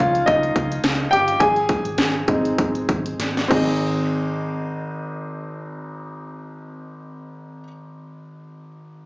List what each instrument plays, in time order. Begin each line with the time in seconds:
Already playing: grand piano F3 C#4 D#4 F4 C#5 F5
0.00 fingered electric bass C#2, kick, closed hi-hat
0.15 closed hi-hat
0.26 fingered electric bass C#2, grand piano D#4 D#5, kick, closed hi-hat
0.43 closed hi-hat
0.56 fingered electric bass C#2, kick, closed hi-hat
0.72 closed hi-hat
0.83 fingered electric bass C#2, snare, closed hi-hat
1.11 fingered electric bass G1, grand piano G4 G5, closed hi-hat
1.28 closed hi-hat
1.40 fingered electric bass G#1, grand piano G#4 G#5, kick, closed hi-hat
1.56 closed hi-hat
1.69 kick, closed hi-hat
1.85 fingered electric bass G#1, closed hi-hat
1.98 fingered electric bass G#1, snare, closed hi-hat
2.28 fingered electric bass G#1, grand piano G#3 C4 D#4, kick, closed hi-hat
2.45 closed hi-hat
2.58 fingered electric bass G#1, kick, closed hi-hat
2.75 closed hi-hat
2.89 fingered electric bass G#1, kick, closed hi-hat
3.06 closed hi-hat
3.19 fingered electric bass G#1, snare, closed hi-hat
3.37 snare, closed hi-hat
3.48 fingered electric bass G#1, grand piano G#1 C4 D#4 G#4, kick, crash
3.54 grand piano D#5